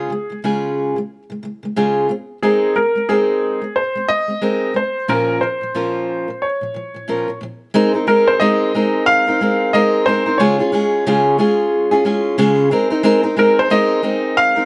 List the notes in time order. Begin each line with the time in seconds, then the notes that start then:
Already playing: G#3 C#4 F4 G#4
0.10 C#3 G#3
0.30 C#3 G#3
0.44 C#3 G#3 C#4 F4 G#4
0.96 C#3 G#3
1.30 C#3 G#3
1.43 C#3 G#3
1.63 C#3 G#3
1.76 C#3 G#3 C#4 F4 G#4
2.09 G#3 C4
2.43 G#3 C4 D#4 G#4 A#4
2.75 G#3 C4 A#4
2.95 G#3 C4
3.09 G#3 C4 D#4 G#4 A#4
3.61 G#3 C4
3.76 C5
3.95 G#3 C4
4.08 G#3 C4 D#5
4.28 G#3 C4
4.41 G#3 C4 D#4 A#4
4.74 G#3 C4 C5
5.08 A#2 F3 C#4 F4 A#4
5.41 A#2 F3 C5
5.61 A#2 F3
5.74 A#2 F3 C#4 F4 A#4
6.28 A#2 F3
6.42 C#5
6.61 A#2 F3
6.74 A#2 F3
6.94 A#2 F3
7.08 A#2 F3 C#4 F4 A#4
7.28 A#2 F3
7.41 A#2 F3
7.74 G#3 C4 D#4 A#4
7.94 C4 D#4 A#4
8.07 G#3 C4 D#4 A#4
8.28 C5
8.40 G#3 C4 D#4 A#4 D#5
8.74 G#3 C4 D#4 A#4
9.06 F5
9.28 C4 D#4 A#4
9.41 G#3 C4 D#4 A#4
9.73 G#3 C4 D#4 A#4 D#5
10.06 G#3 C4 D#4 A#4 C5
10.26 C4 D#4 A#4
10.38 C#3 G#3 C#4 F4 G#4 C#5
10.59 C#4 F4 G#4
10.72 G#3 C#4 F4 G#4
11.06 C#3 G#3 C#4 F4 G#4
11.38 G#3 C#4 F4 G#4
11.91 C#4 F4 G#4
12.05 G#3 C#4 F4 G#4
12.38 C#3 G#3 C#4 F4 G#4
12.71 G#3 C4 D#4 A#4
12.90 C4 D#4 A#4
13.03 G#3 C4 D#4 A#4
13.23 C4 D#4 A#4
13.36 G#3 C4 D#4 A#4
13.59 C5
13.70 G#3 C4 D#4 A#4 D#5
14.02 G#3 C4 D#4 A#4
14.37 F5
14.56 C4 D#4 A#4